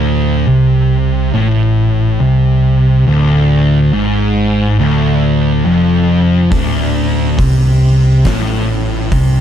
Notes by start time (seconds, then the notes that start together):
Already playing: D1 D2
0.47 C2 C3
1.34 A1 A2
2.20 C2 C3
3.07 D1 D2
3.93 G#1 G#2
4.79 D1 D2
5.65 F1 F2
6.52 D1 D2, kick, open hi-hat
7.38 C2 C3, kick, open hi-hat
8.25 A1 A2, kick, snare, open hi-hat
9.11 C2 C3, kick, open hi-hat